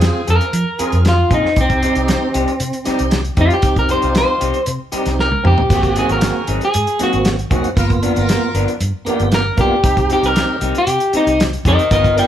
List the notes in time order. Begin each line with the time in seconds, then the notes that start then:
Already playing: C4 F4 G#4
0.01 snare, closed hi-hat
0.27 F2 F3 C4 F4 G#4 A#4, closed hi-hat
0.41 closed hi-hat
0.53 F3, closed hi-hat
0.79 F3 C4 F4 G#4, muted fingered electric bass stroke, closed hi-hat
0.92 F2, closed hi-hat
1.05 F4, snare, closed hi-hat
1.30 A#2 F3 C4 D#4 F4 G#4, kick, closed hi-hat
1.44 muted fingered electric bass stroke, snare
1.56 C2 C4 D#4 G4, kick, closed hi-hat
1.61 C4
1.70 kick, closed hi-hat
1.82 G3 C4 D#4 G4, closed hi-hat
1.95 C2 C4 D#4 G4, closed hi-hat
2.08 snare, closed hi-hat
2.34 C2 G3 C4 D#4 G4, closed hi-hat
2.48 closed hi-hat
2.60 C3, closed hi-hat
2.73 closed hi-hat
2.84 G3 C4 D#4 G4, muted fingered electric bass stroke, snare, closed hi-hat
2.99 C2, closed hi-hat
3.11 snare, closed hi-hat
3.25 closed hi-hat
3.37 F2 G3 C4 D#4 G4, kick, closed hi-hat
3.41 F4
3.50 G4, closed hi-hat
3.61 C2 C4 D#4 G4, kick, closed hi-hat
3.76 A#4, kick, closed hi-hat
3.89 G3 C4 D#4 G4 C5, closed hi-hat
4.01 C2 C4 D#4 F4, closed hi-hat
4.15 C5, snare, closed hi-hat
4.40 C2 G3 C4 D#4 G4, closed hi-hat
4.54 closed hi-hat
4.66 C3, closed hi-hat
4.92 G3 C4 D#4 G4, muted fingered electric bass stroke, closed hi-hat
5.06 C2, snare, closed hi-hat
5.19 A#4, snare
5.32 high tom
5.43 F2 G3 C4 D#4 G4, mid tom
5.58 floor tom
5.69 G#1 A#3 C4 F#4 G#4, kick, closed hi-hat, crash
5.83 kick, closed hi-hat
5.96 F#3 C4 D#4 F#4 G#4, closed hi-hat
6.09 G#1 C4 F#4 G#4 A#4, closed hi-hat
6.21 snare, closed hi-hat
6.47 G#1 F#3 C4 D#4 G#4, closed hi-hat
6.61 G#4, closed hi-hat
6.74 G#2, closed hi-hat
6.87 closed hi-hat
6.99 F#3 A#3 C4 D#4 F#4 G#4, muted fingered electric bass stroke, snare, closed hi-hat
7.03 F#4
7.13 G#1, closed hi-hat
7.25 snare, closed hi-hat
7.39 closed hi-hat
7.50 C2 F#3 A#3 C4 D#4 F#4 G#4, kick, closed hi-hat
7.64 muted fingered electric bass stroke, closed hi-hat
7.76 G1 A#3 B3 F4 A#4, kick, closed hi-hat
7.90 kick, closed hi-hat
8.02 F3 B3 D4 F4 A#4, closed hi-hat
8.16 G1 F4 A#4, closed hi-hat
8.29 snare, closed hi-hat
8.54 G1 F3 B3 D4 A#4, closed hi-hat
8.68 closed hi-hat
8.81 G2, closed hi-hat
9.05 F3 A#3 B3 D4 G4 A#4, muted fingered electric bass stroke, closed hi-hat
9.19 G1, closed hi-hat
9.32 A#4, snare, closed hi-hat
9.57 B1 F3 A#3 B3 D4 F4 A#4, kick, closed hi-hat
9.61 G4
9.83 C2 C4 D#4 G4, kick, closed hi-hat
9.97 kick, closed hi-hat
10.09 C4 D#4 G4, closed hi-hat
10.23 C2 C4 D#4 G4 A#4, closed hi-hat
10.36 snare, closed hi-hat
10.61 C2 C4 D#4 G4, closed hi-hat
10.75 G4, closed hi-hat
10.87 C3, closed hi-hat
11.00 closed hi-hat
11.13 C4 D#4 G4, muted fingered electric bass stroke, closed hi-hat
11.27 C2, closed hi-hat
11.40 snare, closed hi-hat
11.53 closed hi-hat
11.65 F2 C4 D#4 G4 A#4 D#5, kick, closed hi-hat
11.78 muted fingered electric bass stroke, closed hi-hat
11.91 G1 B3 F4 A#4 D#5, kick, closed hi-hat
12.04 kick, closed hi-hat
12.16 F3 B3 D4 F4 A#4 D5 G5, closed hi-hat